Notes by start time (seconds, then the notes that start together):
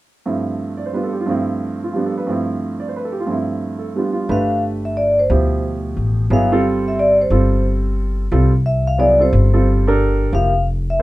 0.26 G2 F3 A3 C4 E4
0.77 D5
0.86 C5
0.93 G3 B3 D4 F4 B4
1.03 A4
1.12 G4
1.20 F4
1.26 G2 F3 A3 C4
1.31 E4
1.84 F4
1.93 F3 G3 B3 D4 G4
2.06 A4
2.18 B4
2.27 G2 F3 A3 C4
2.32 E4
2.80 D5
2.89 C5
2.96 B4
3.05 A4
3.12 G4
3.20 F4
3.26 G2 F3 A3 C4
3.31 E4
3.79 A4
3.95 G3 B3 D4 F4 G4
4.13 F4
4.29 G1 A3 D4 G4 B4 F5
4.85 E5
4.97 D5
5.19 C5
5.30 D2 B2 F3 E4 G4
5.97 A1
6.30 G1 F#3 B3 E4 G#4 F5
6.52 G3 C4 F4 A4
6.88 E5
6.99 D5
7.21 C5
7.30 G1 G3 C4 F4 A4
8.32 C2 G3 C4 F4 A4
8.66 E5
8.87 F5
8.98 F#3 B3 E4 G#4 D5
9.19 G3 C4 F4 A4 C5
9.33 G1
9.53 G3 C4 F4 A4
9.87 D4 G4 A4 A#4
10.33 F1 F3 A#3 E4 G4 F5
10.90 E5